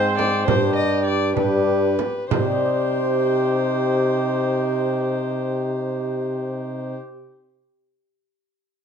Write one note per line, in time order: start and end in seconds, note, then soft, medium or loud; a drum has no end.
0.00 0.43 G#2 medium
0.00 0.44 G#2 medium
0.00 0.41 C4 medium
0.00 0.49 C4 medium
0.00 0.42 D#4 medium
0.00 0.17 C5 loud
0.00 0.50 C5 medium
0.17 0.46 D5 medium
0.17 frame drum medium
0.45 1.34 G2 medium
0.45 1.32 G2 medium
0.45 1.32 D4 medium
0.45 1.36 D4 medium
0.45 1.33 G4 medium
0.45 1.36 G4 medium
0.45 0.75 C5 loud
0.45 frame drum medium
0.75 1.04 D#5 medium
1.05 1.35 D5 medium
1.33 1.94 G2 medium
1.33 1.97 G2 medium
1.33 2.26 D4 soft
1.33 1.98 D4 medium
1.33 2.27 G4 soft
1.33 2.29 B4 medium
1.33 frame drum soft
1.37 2.05 G4 medium
1.99 frame drum medium
2.30 7.14 C3 medium
2.30 6.97 C3 medium
2.30 6.97 D#4 medium
2.30 6.97 G4 medium
2.30 6.97 C5 medium
2.30 frame drum medium
2.37 7.21 G3 medium
2.45 7.28 C4 medium
2.52 7.35 D#4 medium
2.58 2.65 G4 medium
2.65 7.49 D#5 medium